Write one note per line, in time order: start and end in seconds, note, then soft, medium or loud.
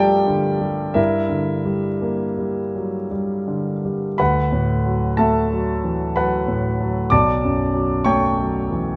0.00 0.93 G2 soft
0.00 0.27 D3 soft
0.00 1.01 F3 soft
0.00 0.61 G3 soft
0.00 1.01 A3 soft
0.00 0.93 G4 soft
0.00 1.00 A4 medium
0.00 0.95 A#4 medium
0.00 0.93 D5 medium
0.00 0.94 E5 medium
0.00 1.00 F5 medium
0.00 0.96 G5 medium
0.00 1.00 A5 medium
0.00 1.00 A#5 medium
0.27 0.83 D3 soft
0.61 0.97 G3 soft
0.94 4.15 G2 soft
0.94 3.06 E4 soft
0.94 3.06 A#4 soft
0.94 3.09 E5 medium
1.29 1.87 D3 soft
1.65 2.23 G3 soft
2.02 2.60 A#3 soft
2.38 2.96 G3 soft
2.75 3.11 F#3 soft
3.11 3.70 G3 soft
3.48 4.06 D3 soft
3.85 4.20 G3 soft
4.18 7.08 D2 soft
4.18 5.16 B4 soft
4.18 5.16 F#5 soft
4.18 5.19 B5 medium
4.52 5.06 A2 soft
4.86 5.39 F#3 soft
5.17 5.72 A3 soft
5.17 6.13 A4 soft
5.17 6.13 E5 soft
5.17 6.16 A5 medium
5.52 6.04 F#3 soft
5.84 6.17 E3 soft
6.16 6.68 F#3 soft
6.16 7.08 B4 soft
6.16 7.08 F#5 soft
6.16 7.11 B5 medium
6.48 6.99 A2 soft
6.81 7.12 F#3 soft
7.10 8.96 B1 soft
7.10 8.02 D5 soft
7.10 8.02 A5 soft
7.10 8.06 D6 medium
7.44 7.94 F#2 soft
7.74 8.25 F#3 soft
8.05 8.57 A3 soft
8.05 8.96 C#5 soft
8.05 8.96 G5 medium
8.05 8.96 C#6 medium
8.38 8.89 F#3 soft
8.71 8.96 E3 soft